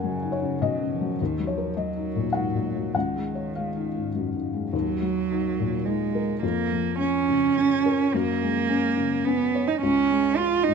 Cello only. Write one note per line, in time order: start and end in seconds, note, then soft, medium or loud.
0.04 0.63 C#3 medium
0.61 0.92 F#3 medium
0.90 1.21 F3 medium
1.19 1.49 D#3 medium
1.47 1.80 F3 soft
1.79 2.95 F#3 medium
2.93 4.52 D#3 soft
4.71 5.87 F#3 medium
5.86 6.42 G#3 medium
6.43 6.98 A#3 medium
6.99 8.16 C#4 medium
8.14 9.26 A#3 medium
9.24 9.69 B3 medium
9.68 9.81 D#4 medium
9.81 10.38 C#4 loud
10.37 10.65 F4 medium
10.63 10.74 D#4 medium